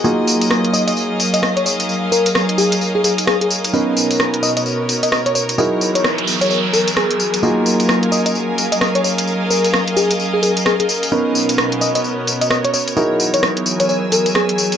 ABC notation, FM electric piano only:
X:1
M:4/4
L:1/16
Q:"Swing 16ths" 1/4=130
K:F#
V:1 name="FM electric piano"
z6 d d z3 d d c c z | z2 A z3 G z2 G G z G G z2 | z6 d d z3 d d c c z | z3 c z3 c c z A z G4 |
z6 d d z3 d d c c z | z2 A z3 G z2 G G z G G z2 | z6 d d z3 d d c c z | z3 c z3 c c z A z G4 |]